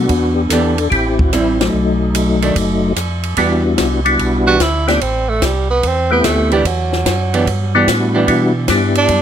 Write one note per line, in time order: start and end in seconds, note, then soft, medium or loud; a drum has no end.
0.00 0.75 B3 medium
0.00 0.51 D4 medium
0.00 0.34 F#4 loud
0.09 0.48 E2 medium
0.09 kick soft
0.09 ride medium
0.35 0.42 G4 medium
0.49 0.88 E2 medium
0.49 0.76 E3 medium
0.49 0.76 B3 medium
0.49 0.90 D4 medium
0.49 0.76 D4 medium
0.49 0.77 G4 medium
0.49 0.88 A4 medium
0.49 hi-hat pedal medium
0.49 ride medium
0.78 ride medium
0.90 1.69 A1 medium
0.90 1.70 C4 medium
0.90 1.31 E4 medium
0.90 1.19 G4 medium
0.90 kick soft
0.90 ride medium
1.18 1.33 F#4 medium
1.18 kick medium
1.32 1.57 G3 medium
1.32 1.58 C4 medium
1.32 1.58 E4 medium
1.32 cross-stick medium
1.32 hi-hat pedal soft
1.32 ride medium
1.60 2.93 F#3 medium
1.60 2.93 A3 medium
1.60 2.92 D#4 medium
1.60 snare medium
1.60 ride medium
1.73 2.51 B1 medium
2.15 hi-hat pedal medium
2.15 ride medium
2.42 2.55 D#3 medium
2.42 2.55 A3 medium
2.42 2.55 D4 medium
2.42 ride medium
2.55 2.94 F#1 medium
2.55 kick soft
2.55 ride medium
2.96 3.34 F2 medium
2.96 cross-stick medium
2.96 hi-hat pedal medium
2.96 ride medium
3.23 ride soft
3.37 3.77 E2 medium
3.37 3.62 E3 soft
3.37 4.00 G3 medium
3.37 3.62 B3 medium
3.37 4.00 B3 medium
3.37 4.00 D4 medium
3.37 3.63 D4 medium
3.37 4.01 E4 medium
3.37 4.01 F#4 medium
3.37 3.63 G4 medium
3.37 kick soft
3.37 ride medium
3.78 4.18 C2 medium
3.78 kick soft
3.78 snare medium
3.78 hi-hat pedal soft
3.78 ride medium
4.05 4.57 G3 medium
4.05 4.57 B3 medium
4.05 4.57 D4 medium
4.05 4.58 E4 medium
4.05 4.57 F#4 medium
4.05 ride soft
4.19 4.59 B1 medium
4.19 kick soft
4.19 ride medium
4.47 4.59 E3 medium
4.47 4.59 B3 medium
4.47 4.59 D4 medium
4.47 4.63 F#4 loud
4.47 4.60 G4 medium
4.60 5.00 D2 medium
4.60 4.88 E4 medium
4.60 kick soft
4.60 snare medium
4.60 hi-hat pedal medium
4.60 ride medium
4.87 5.00 A3 medium
4.87 5.00 B3 medium
4.87 5.00 C4 medium
4.87 5.04 D4 medium
4.87 5.00 E4 medium
4.87 5.00 G4 medium
4.87 snare medium
4.87 ride soft
5.00 5.40 A1 medium
5.00 5.30 C4 medium
5.00 kick soft
5.00 ride medium
5.29 5.46 A3 medium
5.42 5.82 C2 medium
5.42 5.70 G3 medium
5.42 kick soft
5.42 snare medium
5.42 hi-hat pedal medium
5.42 ride medium
5.70 5.88 B3 medium
5.83 6.23 E2 medium
5.83 6.11 C4 medium
5.83 kick soft
5.83 ride medium
6.11 6.62 A3 medium
6.11 6.62 B3 medium
6.11 6.26 B3 medium
6.11 6.63 C4 medium
6.11 6.63 E4 medium
6.11 6.63 G4 medium
6.24 6.63 D2 medium
6.24 6.52 A3 medium
6.24 kick soft
6.24 snare medium
6.24 hi-hat pedal medium
6.24 ride medium
6.52 6.64 E3 medium
6.52 6.68 G3 medium
6.52 6.64 B3 medium
6.52 6.64 D4 medium
6.52 6.64 G4 medium
6.52 ride soft
6.64 7.04 E2 medium
6.64 7.88 F#3 medium
6.64 kick soft
6.64 ride medium
6.93 snare soft
7.06 7.45 F#2 medium
7.06 kick soft
7.06 snare medium
7.06 hi-hat pedal medium
7.06 ride medium
7.34 7.45 E3 medium
7.34 7.46 B3 medium
7.34 7.46 D4 medium
7.34 7.46 G4 medium
7.34 ride medium
7.46 7.86 G2 medium
7.46 kick soft
7.46 ride medium
7.75 7.87 E3 medium
7.75 8.26 G3 medium
7.75 8.26 B3 medium
7.75 7.87 B3 medium
7.75 8.26 D4 medium
7.75 7.87 D4 medium
7.75 8.26 E4 medium
7.75 8.26 F#4 medium
7.75 7.87 G4 medium
7.87 8.27 A2 medium
7.87 kick soft
7.87 snare medium
7.87 hi-hat pedal medium
7.87 ride medium
8.14 8.66 E3 medium
8.14 8.67 B3 medium
8.14 8.67 D4 medium
8.14 8.67 G4 medium
8.27 8.68 B2 medium
8.27 8.53 G3 medium
8.27 8.53 B3 medium
8.27 8.53 D4 medium
8.27 8.53 E4 medium
8.27 8.53 F#4 medium
8.27 kick soft
8.27 ride medium
8.68 9.08 G2 medium
8.68 9.22 G3 medium
8.68 9.22 B3 medium
8.68 9.22 D4 medium
8.68 9.22 E4 medium
8.68 9.22 G4 medium
8.68 kick soft
8.68 snare medium
8.68 hi-hat pedal medium
8.68 ride medium
8.95 9.22 D4 loud
8.95 ride medium
9.08 9.22 F#2 medium
9.08 kick soft
9.08 ride medium